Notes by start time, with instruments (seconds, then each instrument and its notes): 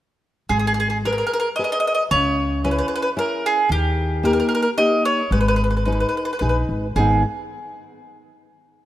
0.49 upright bass G#1, nylon-string guitar G#3, mandolin G#4
0.59 mandolin G#4
0.67 mandolin G#4
0.74 mandolin G#4
0.80 mandolin G#4
0.90 mandolin G#4
1.05 nylon-string guitar G#4 A#4 B4, mandolin A#4
1.12 mandolin A#4
1.18 mandolin A#4
1.27 mandolin A#4
1.33 mandolin A#4
1.40 mandolin A#4
1.56 nylon-string guitar G#4 A#4, mandolin D#5
1.60 nylon-string guitar B4
1.64 mandolin D#5
1.72 mandolin D#5
1.80 mandolin D#5
1.87 mandolin D#5
1.95 mandolin D#5
2.11 upright bass C#2, nylon-string guitar C#3, mandolin C#5
2.64 nylon-string guitar C#4 E4 G#4, mandolin B4
2.71 mandolin B4
2.79 mandolin B4
2.88 mandolin B4
2.96 mandolin B4
3.02 mandolin B4
3.17 nylon-string guitar C#4 E4 G#4, mandolin A#4
3.46 mandolin G#4
3.69 upright bass D#2, nylon-string guitar D#3, mandolin G4
4.23 nylon-string guitar A#3 D#4 G4, mandolin A#4
4.33 mandolin A#4
4.40 mandolin A#4
4.49 mandolin A#4
4.55 mandolin A#4
4.62 mandolin A#4
4.78 nylon-string guitar A#3 D#4 G4, mandolin D#5
5.05 mandolin C#5
5.31 upright bass G#1, nylon-string guitar G#3, mandolin B4
5.41 mandolin B4
5.48 mandolin B4
5.56 mandolin B4
5.64 mandolin B4
5.71 mandolin B4
5.77 mandolin B4
5.85 nylon-string guitar D#4 G#4 B4, mandolin B4
5.92 mandolin B4
6.00 mandolin B4
6.09 mandolin B4
6.17 mandolin B4
6.25 mandolin B4
6.33 mandolin B4
6.39 upright bass A#1, nylon-string guitar D#4 G#4 B4, mandolin B4
6.49 mandolin B4
6.69 upright bass G#1
6.96 upright bass G#1, nylon-string guitar G#2 D#3 G#3 B3 D#4, mandolin G#4